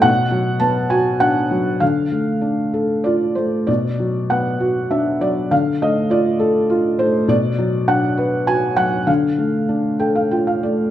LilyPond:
<<
  \new Staff \with { instrumentName = "Felt piano" } { \time 3/4 \key d \phrygian \tempo 4 = 100 << { fis''4 a''8 aes''8 fis''4 | f''2 d''8 c''8 | d''4 fis''4 e''8 d''8 | f''8 ees''8 d''4. c''8 |
d''4 fis''4 aes''8 fis''8 | f''2 r4 | } \\ { r2. | r2. | r2. | r2. |
r2. | r4. g''16 f''16 g''16 f''16 d''8 | } >> }
  \new Staff \with { instrumentName = "Felt piano" } { \time 3/4 \key d \phrygian b,8 fis8 b8 fis'8 d'8 fis8 | d8 a8 d'8 a'8 f'8 a8 | b,8 fis8 b8 fis'8 d'8 fis8 | d8 a8 f'8 a'8 f'8 a8 |
b,8 fis8 d'8 b'8 fis'8 fis8 | d8 a8 d'8 a'8 f'8 a8 | }
>>